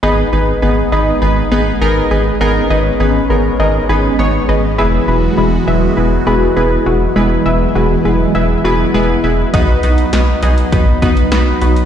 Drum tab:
HH |----------------|----------------|----------------|----------------|
SD |----------------|----------------|----------------|----------------|
BD |----------------|----------------|----------------|----------------|

HH |x-xxx-xxx-xxx-xx|
SD |----o-------o---|
BD |o-------o-o-----|